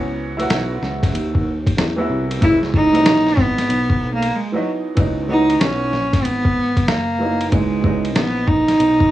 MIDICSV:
0, 0, Header, 1, 5, 480
1, 0, Start_track
1, 0, Tempo, 638298
1, 1818, Time_signature, 4, 2, 24, 8
1, 6852, End_track
2, 0, Start_track
2, 0, Title_t, "Cello"
2, 0, Program_c, 0, 42
2, 0, Note_on_c, 0, 59, 101
2, 143, Note_off_c, 0, 59, 0
2, 1829, Note_on_c, 0, 64, 101
2, 1935, Note_off_c, 0, 64, 0
2, 2066, Note_on_c, 0, 63, 112
2, 2554, Note_on_c, 0, 59, 104
2, 2566, Note_off_c, 0, 63, 0
2, 3106, Note_off_c, 0, 59, 0
2, 3117, Note_on_c, 0, 58, 84
2, 3268, Note_on_c, 0, 56, 83
2, 3280, Note_off_c, 0, 58, 0
2, 3423, Note_off_c, 0, 56, 0
2, 3429, Note_on_c, 0, 54, 70
2, 3535, Note_off_c, 0, 54, 0
2, 3983, Note_on_c, 0, 63, 95
2, 4204, Note_off_c, 0, 63, 0
2, 4224, Note_on_c, 0, 61, 96
2, 4695, Note_on_c, 0, 59, 103
2, 4706, Note_off_c, 0, 61, 0
2, 5172, Note_on_c, 0, 58, 93
2, 5183, Note_off_c, 0, 59, 0
2, 5646, Note_off_c, 0, 58, 0
2, 5650, Note_on_c, 0, 56, 92
2, 6104, Note_off_c, 0, 56, 0
2, 6137, Note_on_c, 0, 59, 86
2, 6372, Note_on_c, 0, 63, 97
2, 6384, Note_off_c, 0, 59, 0
2, 6852, Note_off_c, 0, 63, 0
2, 6852, End_track
3, 0, Start_track
3, 0, Title_t, "Upright piano"
3, 0, Program_c, 1, 0
3, 0, Note_on_c, 1, 52, 87
3, 0, Note_on_c, 1, 54, 81
3, 0, Note_on_c, 1, 59, 82
3, 0, Note_on_c, 1, 61, 101
3, 238, Note_off_c, 1, 52, 0
3, 243, Note_off_c, 1, 54, 0
3, 249, Note_off_c, 1, 59, 0
3, 252, Note_off_c, 1, 61, 0
3, 278, Note_on_c, 1, 64, 91
3, 288, Note_on_c, 1, 54, 78
3, 301, Note_on_c, 1, 59, 84
3, 310, Note_on_c, 1, 66, 92
3, 1112, Note_off_c, 1, 64, 0
3, 1117, Note_off_c, 1, 54, 0
3, 1123, Note_off_c, 1, 59, 0
3, 1128, Note_off_c, 1, 66, 0
3, 1475, Note_on_c, 1, 52, 89
3, 1486, Note_on_c, 1, 54, 83
3, 1494, Note_on_c, 1, 59, 81
3, 1505, Note_on_c, 1, 64, 96
3, 1781, Note_off_c, 1, 52, 0
3, 1787, Note_off_c, 1, 54, 0
3, 1791, Note_off_c, 1, 59, 0
3, 1796, Note_off_c, 1, 64, 0
3, 1801, Note_on_c, 1, 52, 73
3, 1810, Note_on_c, 1, 54, 72
3, 1819, Note_on_c, 1, 59, 68
3, 1827, Note_on_c, 1, 64, 82
3, 2154, Note_off_c, 1, 52, 0
3, 2158, Note_off_c, 1, 54, 0
3, 2163, Note_off_c, 1, 59, 0
3, 2167, Note_off_c, 1, 64, 0
3, 2194, Note_on_c, 1, 52, 76
3, 2204, Note_on_c, 1, 54, 68
3, 2213, Note_on_c, 1, 59, 70
3, 2224, Note_on_c, 1, 63, 81
3, 3030, Note_off_c, 1, 52, 0
3, 3035, Note_off_c, 1, 54, 0
3, 3039, Note_off_c, 1, 59, 0
3, 3045, Note_off_c, 1, 63, 0
3, 3399, Note_on_c, 1, 52, 73
3, 3407, Note_on_c, 1, 54, 66
3, 3416, Note_on_c, 1, 59, 68
3, 3426, Note_on_c, 1, 63, 82
3, 3703, Note_off_c, 1, 52, 0
3, 3707, Note_off_c, 1, 54, 0
3, 3712, Note_off_c, 1, 59, 0
3, 3717, Note_off_c, 1, 63, 0
3, 3725, Note_on_c, 1, 52, 72
3, 3734, Note_on_c, 1, 54, 67
3, 3744, Note_on_c, 1, 59, 66
3, 3756, Note_on_c, 1, 63, 78
3, 3953, Note_off_c, 1, 52, 0
3, 3957, Note_off_c, 1, 54, 0
3, 3962, Note_off_c, 1, 59, 0
3, 3965, Note_on_c, 1, 51, 54
3, 3968, Note_off_c, 1, 63, 0
3, 3977, Note_on_c, 1, 54, 60
3, 3986, Note_on_c, 1, 59, 66
3, 3993, Note_on_c, 1, 66, 72
3, 4012, Note_on_c, 1, 52, 67
3, 4034, Note_off_c, 1, 51, 0
3, 4864, Note_off_c, 1, 54, 0
3, 4868, Note_off_c, 1, 59, 0
3, 4872, Note_off_c, 1, 66, 0
3, 4881, Note_off_c, 1, 52, 0
3, 5404, Note_on_c, 1, 52, 64
3, 5416, Note_on_c, 1, 54, 59
3, 5425, Note_on_c, 1, 59, 59
3, 5436, Note_on_c, 1, 63, 75
3, 5629, Note_off_c, 1, 52, 0
3, 5638, Note_off_c, 1, 54, 0
3, 5640, Note_on_c, 1, 52, 70
3, 5643, Note_off_c, 1, 59, 0
3, 5648, Note_off_c, 1, 63, 0
3, 5653, Note_on_c, 1, 54, 66
3, 5662, Note_on_c, 1, 59, 64
3, 5671, Note_on_c, 1, 63, 78
3, 5868, Note_off_c, 1, 52, 0
3, 5877, Note_off_c, 1, 54, 0
3, 5879, Note_on_c, 1, 52, 66
3, 5881, Note_off_c, 1, 59, 0
3, 5886, Note_off_c, 1, 63, 0
3, 5888, Note_on_c, 1, 54, 63
3, 5899, Note_on_c, 1, 59, 62
3, 5910, Note_on_c, 1, 63, 75
3, 6775, Note_off_c, 1, 52, 0
3, 6779, Note_off_c, 1, 54, 0
3, 6785, Note_off_c, 1, 59, 0
3, 6790, Note_off_c, 1, 63, 0
3, 6852, End_track
4, 0, Start_track
4, 0, Title_t, "Fretless electric bass"
4, 0, Program_c, 2, 35
4, 0, Note_on_c, 2, 37, 88
4, 353, Note_off_c, 2, 37, 0
4, 377, Note_on_c, 2, 35, 90
4, 605, Note_off_c, 2, 35, 0
4, 616, Note_on_c, 2, 37, 84
4, 845, Note_off_c, 2, 37, 0
4, 854, Note_on_c, 2, 39, 84
4, 1312, Note_off_c, 2, 39, 0
4, 1333, Note_on_c, 2, 40, 84
4, 1563, Note_off_c, 2, 40, 0
4, 1573, Note_on_c, 2, 36, 92
4, 1803, Note_off_c, 2, 36, 0
4, 1820, Note_on_c, 2, 37, 99
4, 2294, Note_off_c, 2, 37, 0
4, 2294, Note_on_c, 2, 34, 88
4, 2524, Note_off_c, 2, 34, 0
4, 2535, Note_on_c, 2, 32, 88
4, 2764, Note_off_c, 2, 32, 0
4, 2774, Note_on_c, 2, 35, 94
4, 3232, Note_off_c, 2, 35, 0
4, 3739, Note_on_c, 2, 37, 101
4, 4194, Note_off_c, 2, 37, 0
4, 4215, Note_on_c, 2, 35, 81
4, 4444, Note_off_c, 2, 35, 0
4, 4458, Note_on_c, 2, 34, 85
4, 4697, Note_off_c, 2, 34, 0
4, 4697, Note_on_c, 2, 32, 89
4, 5174, Note_off_c, 2, 32, 0
4, 5174, Note_on_c, 2, 30, 91
4, 5632, Note_off_c, 2, 30, 0
4, 5657, Note_on_c, 2, 37, 96
4, 6135, Note_off_c, 2, 37, 0
4, 6135, Note_on_c, 2, 34, 82
4, 6592, Note_off_c, 2, 34, 0
4, 6613, Note_on_c, 2, 35, 88
4, 6852, Note_off_c, 2, 35, 0
4, 6852, End_track
5, 0, Start_track
5, 0, Title_t, "Drums"
5, 297, Note_on_c, 9, 51, 52
5, 372, Note_off_c, 9, 51, 0
5, 376, Note_on_c, 9, 44, 57
5, 376, Note_on_c, 9, 51, 75
5, 379, Note_on_c, 9, 38, 98
5, 451, Note_off_c, 9, 44, 0
5, 451, Note_off_c, 9, 51, 0
5, 454, Note_off_c, 9, 38, 0
5, 622, Note_on_c, 9, 38, 31
5, 698, Note_off_c, 9, 38, 0
5, 774, Note_on_c, 9, 36, 93
5, 777, Note_on_c, 9, 38, 37
5, 778, Note_on_c, 9, 51, 59
5, 849, Note_off_c, 9, 36, 0
5, 852, Note_off_c, 9, 38, 0
5, 853, Note_off_c, 9, 51, 0
5, 865, Note_on_c, 9, 51, 77
5, 941, Note_off_c, 9, 51, 0
5, 1015, Note_on_c, 9, 36, 82
5, 1090, Note_off_c, 9, 36, 0
5, 1253, Note_on_c, 9, 36, 89
5, 1256, Note_on_c, 9, 51, 56
5, 1328, Note_off_c, 9, 36, 0
5, 1331, Note_off_c, 9, 51, 0
5, 1341, Note_on_c, 9, 44, 43
5, 1341, Note_on_c, 9, 51, 66
5, 1342, Note_on_c, 9, 38, 101
5, 1416, Note_off_c, 9, 44, 0
5, 1416, Note_off_c, 9, 51, 0
5, 1417, Note_off_c, 9, 38, 0
5, 1736, Note_on_c, 9, 51, 63
5, 1811, Note_off_c, 9, 51, 0
5, 1819, Note_on_c, 9, 51, 69
5, 1820, Note_on_c, 9, 36, 111
5, 1894, Note_off_c, 9, 51, 0
5, 1895, Note_off_c, 9, 36, 0
5, 1977, Note_on_c, 9, 38, 34
5, 2052, Note_off_c, 9, 38, 0
5, 2058, Note_on_c, 9, 36, 84
5, 2133, Note_off_c, 9, 36, 0
5, 2216, Note_on_c, 9, 51, 51
5, 2291, Note_off_c, 9, 51, 0
5, 2298, Note_on_c, 9, 44, 56
5, 2298, Note_on_c, 9, 51, 80
5, 2300, Note_on_c, 9, 38, 104
5, 2373, Note_off_c, 9, 44, 0
5, 2373, Note_off_c, 9, 51, 0
5, 2376, Note_off_c, 9, 38, 0
5, 2456, Note_on_c, 9, 38, 35
5, 2531, Note_off_c, 9, 38, 0
5, 2535, Note_on_c, 9, 36, 97
5, 2541, Note_on_c, 9, 38, 32
5, 2611, Note_off_c, 9, 36, 0
5, 2616, Note_off_c, 9, 38, 0
5, 2694, Note_on_c, 9, 38, 36
5, 2695, Note_on_c, 9, 51, 62
5, 2769, Note_off_c, 9, 38, 0
5, 2770, Note_off_c, 9, 51, 0
5, 2782, Note_on_c, 9, 51, 75
5, 2857, Note_off_c, 9, 51, 0
5, 2932, Note_on_c, 9, 36, 79
5, 3007, Note_off_c, 9, 36, 0
5, 3177, Note_on_c, 9, 51, 57
5, 3252, Note_off_c, 9, 51, 0
5, 3736, Note_on_c, 9, 51, 66
5, 3739, Note_on_c, 9, 36, 110
5, 3811, Note_off_c, 9, 51, 0
5, 3814, Note_off_c, 9, 36, 0
5, 4135, Note_on_c, 9, 51, 52
5, 4210, Note_off_c, 9, 51, 0
5, 4218, Note_on_c, 9, 44, 52
5, 4218, Note_on_c, 9, 51, 76
5, 4220, Note_on_c, 9, 38, 99
5, 4293, Note_off_c, 9, 44, 0
5, 4293, Note_off_c, 9, 51, 0
5, 4295, Note_off_c, 9, 38, 0
5, 4461, Note_on_c, 9, 38, 30
5, 4537, Note_off_c, 9, 38, 0
5, 4612, Note_on_c, 9, 36, 91
5, 4613, Note_on_c, 9, 38, 36
5, 4614, Note_on_c, 9, 51, 60
5, 4688, Note_off_c, 9, 36, 0
5, 4688, Note_off_c, 9, 38, 0
5, 4689, Note_off_c, 9, 51, 0
5, 4701, Note_on_c, 9, 51, 75
5, 4776, Note_off_c, 9, 51, 0
5, 4852, Note_on_c, 9, 36, 82
5, 4927, Note_off_c, 9, 36, 0
5, 5091, Note_on_c, 9, 36, 82
5, 5092, Note_on_c, 9, 51, 53
5, 5166, Note_off_c, 9, 36, 0
5, 5167, Note_off_c, 9, 51, 0
5, 5176, Note_on_c, 9, 44, 43
5, 5176, Note_on_c, 9, 51, 59
5, 5177, Note_on_c, 9, 38, 102
5, 5251, Note_off_c, 9, 44, 0
5, 5251, Note_off_c, 9, 51, 0
5, 5252, Note_off_c, 9, 38, 0
5, 5571, Note_on_c, 9, 51, 60
5, 5646, Note_off_c, 9, 51, 0
5, 5656, Note_on_c, 9, 51, 69
5, 5658, Note_on_c, 9, 36, 109
5, 5731, Note_off_c, 9, 51, 0
5, 5733, Note_off_c, 9, 36, 0
5, 5896, Note_on_c, 9, 36, 83
5, 5971, Note_off_c, 9, 36, 0
5, 6052, Note_on_c, 9, 51, 51
5, 6127, Note_off_c, 9, 51, 0
5, 6133, Note_on_c, 9, 44, 55
5, 6133, Note_on_c, 9, 51, 72
5, 6135, Note_on_c, 9, 38, 102
5, 6208, Note_off_c, 9, 44, 0
5, 6208, Note_off_c, 9, 51, 0
5, 6211, Note_off_c, 9, 38, 0
5, 6373, Note_on_c, 9, 36, 89
5, 6449, Note_off_c, 9, 36, 0
5, 6529, Note_on_c, 9, 38, 36
5, 6530, Note_on_c, 9, 51, 58
5, 6604, Note_off_c, 9, 38, 0
5, 6605, Note_off_c, 9, 51, 0
5, 6617, Note_on_c, 9, 51, 77
5, 6692, Note_off_c, 9, 51, 0
5, 6770, Note_on_c, 9, 36, 75
5, 6845, Note_off_c, 9, 36, 0
5, 6852, End_track
0, 0, End_of_file